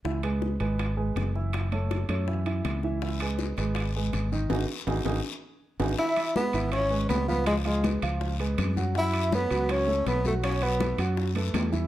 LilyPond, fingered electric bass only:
\new Staff \with { instrumentName = "Fingered electric bass" } { \clef bass \time 4/4 \key cis \minor \tempo 4 = 162 cis,4. gis,,4. fis,,4~ | fis,,4. fis,4. cis,4~ | cis,4. gis,,4. gis,,4 | gis,,8 r8 gis,,8 gis,,8 r4. gis,,8 |
r4. gis,,4. cis,4~ | cis,4. cis,4. fis,4~ | fis,4. cis,4. b,,4~ | b,,4. fis,4. e,4 | }